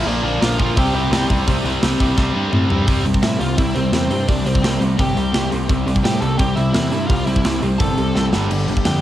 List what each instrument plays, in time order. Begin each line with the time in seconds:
0.05 picked electric bass A#1, distorted electric guitar A#2 D3 F3 A#3 D4, lead electric guitar D4 D5
0.23 picked electric bass A#1, distorted electric guitar A#2 D3 F3 A#3 D4
0.41 picked electric bass A#1, distorted electric guitar A#2 D3 F3 A#3 D4, lead electric guitar F4 F5, snare, open hi-hat
0.58 distorted electric guitar A#2 D3 F3 A#3 D4, kick
0.76 picked electric bass C2, distorted electric guitar C3 G3 C4 E4, lead electric guitar G4 G5, kick, open hi-hat
0.94 picked electric bass C2, distorted electric guitar C3 G3 C4 E4
1.10 picked electric bass C2, distorted electric guitar C3 G3 C4 E4, snare, open hi-hat
1.29 picked electric bass C2, distorted electric guitar C3 G3 C4 E4, kick
1.47 picked electric bass C2, distorted electric guitar C3 G3 C4 E4, kick, open hi-hat
1.64 picked electric bass C2, distorted electric guitar C3 G3 C4 E4, open hi-hat
1.81 picked electric bass C2, distorted electric guitar C3 G3 C4 E4, snare, open hi-hat
1.99 picked electric bass C2, distorted electric guitar C3 G3 C4 E4, kick, open hi-hat
2.16 picked electric bass C2, distorted electric guitar C3 G3 C4 E4, kick, snare
2.33 picked electric bass G2, distorted electric guitar C3 G3 C4 E4
2.51 picked electric bass A2, distorted electric guitar C3 G3 C4 E4, mid tom
2.69 picked electric bass G2, distorted electric guitar C3 G3 C4 E4, floor tom
2.87 picked electric bass C2, distorted electric guitar C3 G3 C4, kick, open hi-hat
3.05 picked electric bass C2, distorted electric guitar C3 G3, open hi-hat
3.14 kick
3.22 picked electric bass A2, distorted electric guitar C3 G3 C4, lead electric guitar E4 E5, snare, open hi-hat
3.40 picked electric bass C2, distorted electric guitar C3 G3 C4, lead electric guitar F4 F5, open hi-hat
3.57 picked electric bass C2, distorted electric guitar C3 G3 C4, lead electric guitar E4 E5, kick, open hi-hat
3.75 picked electric bass C2, distorted electric guitar C3 G3, lead electric guitar C4 C5, open hi-hat
3.93 picked electric bass E2, distorted electric guitar C3 G3 C4, lead electric guitar C4 C5, snare, open hi-hat
4.11 picked electric bass G2, distorted electric guitar C3 G3 C4, open hi-hat
4.28 picked electric bass C2, distorted electric guitar C3 G3 C4, lead electric guitar D4 D5, kick, open hi-hat
4.45 picked electric bass C2, distorted electric guitar C3 G3, lead electric guitar C4 C5, open hi-hat
4.55 kick
4.62 picked electric bass C2, distorted electric guitar C3 G3 C4, snare, open hi-hat
4.80 picked electric bass C2, distorted electric guitar C3 G3 C4, open hi-hat
4.97 picked electric bass G1, distorted electric guitar C3 G3 C4, lead electric guitar G4 G5, kick, open hi-hat
5.15 picked electric bass C2, distorted electric guitar C3 G3, open hi-hat
5.32 picked electric bass C2, distorted electric guitar C3 G3 C4, snare, open hi-hat
5.51 picked electric bass C2, distorted electric guitar C3 G3 C4, open hi-hat
5.68 picked electric bass C2, distorted electric guitar C3 G3 C4, kick, open hi-hat
5.87 picked electric bass C2, distorted electric guitar C3 G3, open hi-hat
5.96 kick
6.03 picked electric bass A2, distorted electric guitar C3 G3 C4, lead electric guitar G4 G5, snare, open hi-hat
6.21 picked electric bass C2, distorted electric guitar C3 G3 C4, lead electric guitar A4 A5, open hi-hat
6.37 picked electric bass C2, distorted electric guitar C3 G3 C4, lead electric guitar G4 G5, kick, open hi-hat
6.56 picked electric bass C2, distorted electric guitar C3 G3, lead electric guitar E4 E5, open hi-hat
6.73 picked electric bass E2, distorted electric guitar C3 G3 C4, lead electric guitar E4 E5, snare, open hi-hat
6.91 picked electric bass G2, distorted electric guitar C3 G3 C4, open hi-hat
7.07 picked electric bass C2, distorted electric guitar C3 G3, lead electric guitar F4 F5, kick, open hi-hat
7.11 distorted electric guitar C4
7.25 picked electric bass C2, distorted electric guitar C3 G3, lead electric guitar E4 E5, open hi-hat
7.36 kick
7.45 picked electric bass C2, distorted electric guitar C3 G3 C4, snare, open hi-hat
7.62 picked electric bass C2, distorted electric guitar C3 G3 C4, open hi-hat
7.78 picked electric bass G1, distorted electric guitar C3 G3 C4, lead electric guitar A4 A5, kick, open hi-hat
7.97 picked electric bass C2, distorted electric guitar C3 G3, open hi-hat
8.15 picked electric bass C2, distorted electric guitar C3 G3 C4, snare
8.32 picked electric bass G1, distorted electric guitar G2 D3 G3, snare
8.50 picked electric bass G1, distorted electric guitar G2 D3 G3, crash
8.67 picked electric bass G1, distorted electric guitar G2 D3, open hi-hat
8.77 kick
8.85 picked electric bass F2, distorted electric guitar G2 D3 G3, lead electric guitar G4 G5, snare, open hi-hat